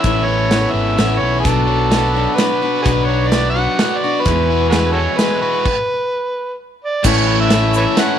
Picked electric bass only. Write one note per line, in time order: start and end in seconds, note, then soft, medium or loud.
0.04 0.65 A1 medium
0.74 0.95 G#1 medium
0.99 1.20 A1 medium
1.21 1.42 B1 medium
1.45 2.25 B1 medium
2.86 3.66 B1 medium
4.26 5.06 E2 medium
7.05 7.85 A1 loud